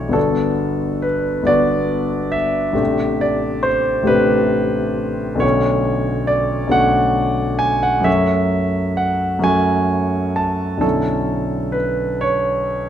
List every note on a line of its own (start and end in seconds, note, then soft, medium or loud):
0.00 0.18 B1 soft
0.00 0.18 E3 soft
0.00 0.18 A3 soft
0.00 0.10 D4 soft
0.00 0.11 F#4 soft
0.00 0.15 C#5 medium
0.00 0.18 D5 medium
0.09 1.41 G1 soft
0.09 1.42 D3 soft
0.09 1.43 B3 soft
0.09 1.45 D4 soft
0.13 1.45 F#4 soft
0.13 1.05 A4 medium
1.02 1.48 B4 medium
1.43 2.72 G1 soft
1.43 2.72 D3 soft
1.43 2.73 B3 soft
1.43 2.74 D4 soft
1.47 2.74 F#4 soft
1.47 2.35 D5 medium
2.32 3.21 E5 medium
2.72 4.01 A1 soft
2.72 4.02 C3 soft
2.72 4.03 A3 soft
2.72 4.04 D4 soft
2.78 4.05 G4 soft
3.21 3.66 D5 medium
3.63 4.08 C5 medium
4.03 5.35 A1 soft
4.03 5.36 C3 soft
4.03 5.36 A3 soft
4.03 5.37 D4 soft
4.07 5.38 G4 soft
4.07 5.42 B4 medium
5.35 6.65 B1 soft
5.35 6.66 D3 soft
5.35 6.67 A3 soft
5.35 6.67 C#4 soft
5.40 6.68 F#4 soft
5.40 6.28 C#5 medium
6.27 6.72 D5 medium
6.67 8.00 B1 soft
6.67 8.00 D3 soft
6.67 8.01 A3 soft
6.67 8.01 C#4 soft
6.72 8.02 F#4 soft
6.72 7.60 F#5 medium
7.59 7.83 G#5 medium
7.83 8.06 F#5 medium
8.00 9.38 F#2 soft
8.00 9.39 F#3 soft
8.00 9.40 A3 soft
8.00 8.98 E5 medium
8.05 9.40 C#4 soft
8.05 9.41 F#4 soft
8.97 9.44 F#5 medium
9.39 10.77 F#2 soft
9.39 10.77 F#3 soft
9.39 10.78 A3 soft
9.39 10.79 C#4 soft
9.44 10.79 F#4 soft
9.44 10.37 G#5 medium
10.36 10.83 A5 medium
10.77 12.89 B1 soft
10.77 12.89 D3 soft
10.77 12.89 F#3 soft
10.77 12.89 C#4 soft
10.77 11.74 A4 medium
10.82 12.89 E4 soft
11.72 12.22 B4 medium
12.21 12.89 C#5 medium